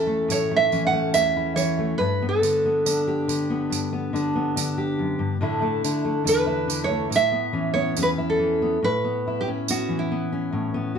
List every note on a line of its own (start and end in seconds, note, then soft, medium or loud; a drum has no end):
0.00 0.28 E2 medium
0.00 0.70 E3 medium
0.00 0.71 C#4 medium
0.00 1.35 E4 medium
0.00 0.29 A4 medium
0.07 0.49 A3 medium
0.28 1.14 A2 medium
0.28 0.56 C#5 loud
0.28 tambourine medium
0.51 0.92 A3 medium
0.56 0.86 E5 loud
0.72 1.55 E3 medium
0.72 1.14 C#4 medium
0.72 tambourine soft
0.87 1.13 F#5 medium
0.93 1.78 A3 medium
1.14 1.94 E2 medium
1.14 1.95 C#4 medium
1.14 1.56 E5 medium
1.14 tambourine medium
1.37 2.00 E4 medium
1.56 1.94 E3 medium
1.56 2.00 C#5 medium
1.56 tambourine medium
1.79 1.94 A3 medium
1.98 3.69 G2 medium
1.98 2.28 B4 medium
2.22 2.64 B3 medium
2.29 3.09 A4 medium
2.42 2.84 D3 medium
2.42 2.85 D4 medium
2.42 tambourine medium
2.65 3.49 B3 medium
2.86 3.27 D3 medium
2.86 4.13 D4 medium
2.86 tambourine medium
3.07 4.76 G4 medium
3.28 4.12 D3 medium
3.28 tambourine medium
3.50 3.92 B3 medium
3.70 4.98 G2 medium
3.70 tambourine medium
3.93 4.34 B3 medium
4.13 4.55 D3 medium
4.13 4.56 D4 medium
4.13 tambourine soft
4.36 5.36 B3 medium
4.56 5.36 D3 medium
4.56 5.37 D4 medium
4.56 tambourine medium
4.78 5.36 G4 medium
4.99 5.19 F#2 medium
5.19 5.41 G2 medium
5.41 5.84 A2 medium
5.41 5.83 D3 medium
5.41 5.61 A3 medium
5.41 5.83 D4 medium
5.41 6.45 E4 medium
5.62 6.04 A3 medium
5.84 6.67 D3 medium
5.84 6.24 D4 medium
5.84 tambourine medium
6.05 6.87 A3 medium
6.24 7.06 E2 medium
6.24 7.06 D4 medium
6.24 tambourine medium
6.28 6.86 B4 medium
6.47 8.17 E4 medium
6.68 7.11 D3 medium
6.68 tambourine medium
6.84 7.13 C#5 medium
6.88 7.06 A3 medium
7.10 7.96 A2 medium
7.10 tambourine medium
7.16 7.72 E5 loud
7.32 7.74 B3 medium
7.53 8.38 E3 medium
7.53 7.96 C#4 medium
7.74 8.61 B3 medium
7.74 7.98 C#5 medium
7.96 8.77 E2 medium
7.96 8.77 C#4 medium
7.96 tambourine medium
8.02 8.09 B4 medium
8.18 9.26 E4 medium
8.30 8.81 A4 medium
8.39 8.77 E3 medium
8.62 8.78 B3 medium
8.83 10.52 A2 medium
8.83 9.40 B4 loud
9.04 9.69 B3 medium
9.27 10.95 E4 medium
9.41 9.48 G4 medium
9.48 10.32 C#4 medium
9.68 10.11 B3 medium
9.68 9.99 F#4 medium
9.68 tambourine loud
9.89 10.98 E3 medium
9.99 10.98 E4 medium
10.12 10.73 B3 medium
10.32 10.98 C#4 medium
10.53 10.98 A2 medium
10.74 10.98 B3 medium
10.95 10.98 F#4 medium